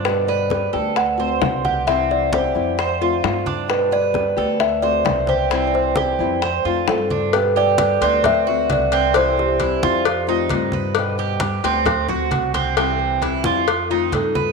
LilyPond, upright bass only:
\new Staff \with { instrumentName = "Upright bass" } { \clef bass \time 4/4 \key g \major \tempo 4 = 132 g,4. d,4. c,4~ | c,4. f,4. g,4~ | g,4. d,4. c,4~ | c,4. f,4 f,8 g,4~ |
g,4. d,4. c,4~ | c,4. f,4. g,4~ | g,4. d,4. c,4~ | c,4. f,4. g,4 | }